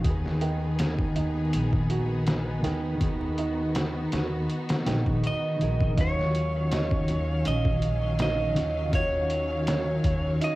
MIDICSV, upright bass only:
0, 0, Header, 1, 2, 480
1, 0, Start_track
1, 0, Key_signature, -6, "minor"
1, 0, Tempo, 740741
1, 30, Time_signature, 4, 2, 24, 8
1, 6838, End_track
2, 0, Start_track
2, 0, Title_t, "Upright bass"
2, 0, Program_c, 0, 32
2, 33, Note_on_c, 0, 39, 95
2, 730, Note_off_c, 0, 39, 0
2, 755, Note_on_c, 0, 39, 92
2, 966, Note_off_c, 0, 39, 0
2, 995, Note_on_c, 0, 34, 91
2, 1691, Note_off_c, 0, 34, 0
2, 1717, Note_on_c, 0, 39, 84
2, 2652, Note_off_c, 0, 39, 0
2, 2676, Note_on_c, 0, 39, 91
2, 2887, Note_off_c, 0, 39, 0
2, 3157, Note_on_c, 0, 34, 85
2, 3268, Note_off_c, 0, 34, 0
2, 3283, Note_on_c, 0, 34, 96
2, 3379, Note_off_c, 0, 34, 0
2, 3636, Note_on_c, 0, 34, 88
2, 3847, Note_off_c, 0, 34, 0
2, 3875, Note_on_c, 0, 39, 94
2, 4571, Note_off_c, 0, 39, 0
2, 4595, Note_on_c, 0, 39, 89
2, 4806, Note_off_c, 0, 39, 0
2, 4833, Note_on_c, 0, 34, 97
2, 5530, Note_off_c, 0, 34, 0
2, 5553, Note_on_c, 0, 39, 86
2, 6491, Note_off_c, 0, 39, 0
2, 6511, Note_on_c, 0, 39, 98
2, 6724, Note_off_c, 0, 39, 0
2, 6838, End_track
0, 0, End_of_file